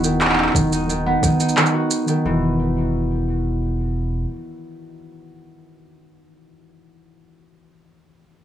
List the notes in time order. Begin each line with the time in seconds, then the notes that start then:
Already playing: D#1 B3 F#4
0.04 D#3, shaker
0.21 D#4, clap, shaker
0.25 clap
0.30 clap
0.34 clap
0.38 clap
0.43 clap
0.47 clap
0.51 D#1, kick, clap
0.55 D#3, shaker
0.73 D#4, shaker
0.89 D#3, shaker
1.06 B3
1.23 D#3, kick, shaker
1.40 D#4, shaker
1.49 shaker
1.57 D#3, clap, shaker
1.66 shaker
1.74 F#4
1.91 shaker
2.08 D#3, shaker
2.25 E1 E3